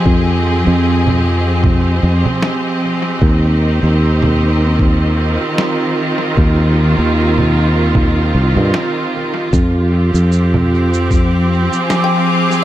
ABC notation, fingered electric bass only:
X:1
M:4/4
L:1/16
Q:"Swing 16ths" 1/4=76
K:Fdor
V:1 name="Fingered electric bass" clef=bass
F,,3 F,,6- F,, F,, z4 z | E,,3 E,,8 z4 z | E,,3 E,,6- E,, C,, G,, z4 | F,,3 F,,8 z4 z |]